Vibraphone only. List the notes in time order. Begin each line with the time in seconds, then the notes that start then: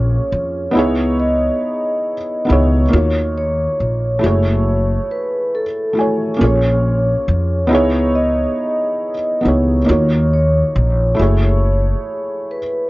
Already playing: C#5
1.20 D#5
2.94 C#5
3.38 C#5
5.11 B4
5.55 A4
6.42 C#5
8.15 D#5
9.46 C#5
10.33 C#5
12.51 B4